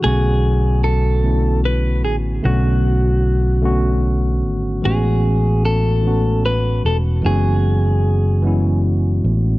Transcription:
<<
  \new Staff \with { instrumentName = "Clean electric guitar" } { \time 6/8 \key b \dorian \tempo 4. = 50 gis'4 a'4 b'8 gis'8 | fis'2 r4 | gis'4 a'4 b'8 a'8 | gis'2 r4 | }
  \new Staff \with { instrumentName = "Tine electric piano" } { \time 6/8 \key b \dorian <d a b cis' fis'>4 r8 <d a b cis' e'>4 r8 | <d a b cis' fis'>4 r8 <d a b cis' fis'>4 r8 | <e gis b cis' fis'>4 r8 <e a b cis' fis'>4 r8 | <e gis b cis' fis'>4 r8 <e gis b cis' e'>4 r8 | }
  \new Staff \with { instrumentName = "Fingered electric bass" } { \clef bass \time 6/8 \key b \dorian b,,2~ b,,8 a,,8 | b,,2~ b,,8 gis,,8 | a,,2~ a,,8 e,,8 | fis,,2~ fis,,8 a,,8 | }
>>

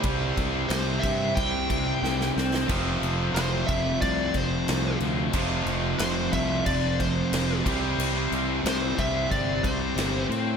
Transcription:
<<
  \new Staff \with { instrumentName = "Lead electric guitar" } { \time 4/4 \key c \major \tempo 4 = 91 r4 c''8 e''8 g''4. r8 | r4 c''8 e''8 d''8 c''4 r8 | r4 c''8 e''8 d''8 c''4 r8 | r4 c''8 e''8 d''8 c''4 r8 | }
  \new Staff \with { instrumentName = "Distorted electric guitar" } { \time 4/4 \key c \major <c e g c' e'>2. <c e g c' e'>8 r8 | <f a c' f'>2.~ <f a c' f'>8 <f a c' f'>8 | <f a c' f'>2.~ <f a c' f'>8 <c e g c' e'>8~ | <c e g c' e'>2. <c e g c' e'>8 r8 | }
  \new Staff \with { instrumentName = "Distorted electric guitar" } { \clef bass \time 4/4 \key c \major <c g c'>2.~ <c g c'>8 r8 | <f, c f>1 | <f, c f>2.~ <f, c f>8 <c g c'>8~ | <c g c'>2.~ <c g c'>8 r8 | }
  \new Staff \with { instrumentName = "Overdriven electric guitar" } { \clef bass \time 4/4 \key c \major <c g c'>2.~ <c g c'>8 r8 | <f, c f>1 | <f, c f>2.~ <f, c f>8 <c g c'>8~ | <c g c'>2.~ <c g c'>8 r8 | }
  \new Staff \with { instrumentName = "Fingered electric bass" } { \clef bass \time 4/4 \key c \major c,8 c,8 c,8 g,8 c,4 c,8 c,8 | f,,8 f,,8 f,,8 f,,8 c,8 f,,8 c,8 d,8 | f,,8 f,,8 f,,8 c,8 f,,4 f,,8 c,8 | c,8 c,8 c,8 c,8 g,,8 c,8 g,,8 a,8 | }
  \new DrumStaff \with { instrumentName = "Drums" } \drummode { \time 4/4 <cymc bd>8 <cymc bd>8 <cymc sn>8 <cymc bd>8 <cymc bd>8 <cymc bd>8 sn16 sn16 sn16 sn16 | <cymc bd>8 cymc8 <cymc sn>8 <cymc bd>8 <cymc bd>8 <cymc bd>8 <cymc sn>8 cymc8 | <cymc bd>8 cymc8 <cymc sn>8 <cymc bd>8 <cymc bd>8 <cymc bd>8 <cymc sn>8 <cymc bd>8 | cymc8 cymc8 <cymc sn>8 <cymc bd>8 <cymc bd>8 <cymc bd>8 <cymc sn>8 cymc8 | }
>>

